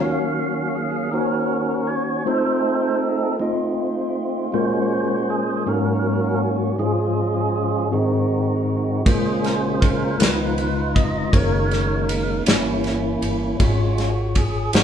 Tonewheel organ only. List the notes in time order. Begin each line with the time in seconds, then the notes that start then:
0.00 F#3 A#3 C#4 F#4 F5
0.75 G#4
1.11 C#4 F#4 A#4
1.87 C#5
2.27 A3 C4 D#4 A4 C5
3.39 A3 C4 F4
4.52 G#3 C#4 F#4 C5
5.30 G#4
5.67 F#3 A#3 C#4 F#4 A#4
6.79 F3 G#3 C#4 F4 G#4
7.92 D#3 G#3 C4 D#4 F#4
9.05 C#3 G#3 C#4 F4 G#4 C5
9.46 A#4
9.56 G#4
9.64 F#4
9.74 G#4
9.81 A#4
10.18 D#3 F3 B3 D#4 F4 B4
10.95 D#5
11.33 D#3 G#3 A#3 A#4 C#5
12.47 E3 A#3 C#4 E4
13.60 G#3 C#4 F4 F#4
14.37 G#4
14.74 F#3 A#3 C4 D#4 F#4 C5